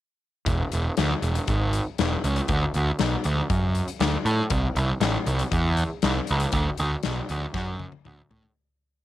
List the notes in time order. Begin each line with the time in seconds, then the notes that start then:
0.46 E1, kick, closed hi-hat
0.72 E1, closed hi-hat
0.97 D2, snare, closed hi-hat
1.22 E1, closed hi-hat
1.35 closed hi-hat
1.47 G#1, kick, closed hi-hat
1.73 closed hi-hat
1.98 E1, snare, closed hi-hat
2.24 C#2, closed hi-hat
2.36 closed hi-hat
2.48 D2, kick, closed hi-hat
2.74 D2, closed hi-hat
2.99 B1, snare, closed hi-hat
3.24 D2, closed hi-hat
3.50 F#2, kick, closed hi-hat
3.75 closed hi-hat
3.88 closed hi-hat
4.00 D2, snare, closed hi-hat
4.25 A2, closed hi-hat
4.50 C2, kick, closed hi-hat
4.76 C2, closed hi-hat
5.00 A1, snare, closed hi-hat
5.26 C2, closed hi-hat
5.39 closed hi-hat
5.52 E2, kick, closed hi-hat
5.77 closed hi-hat
6.02 C2, snare, closed hi-hat
6.27 C#2, closed hi-hat
6.40 closed hi-hat
6.52 D2, kick, closed hi-hat
6.77 D2, closed hi-hat
7.03 B1, snare, closed hi-hat
7.29 D2, closed hi-hat
7.54 F#2, kick, snare
7.79 high tom
7.92 high tom
8.05 D2, mid tom
8.30 A2, floor tom
8.43 floor tom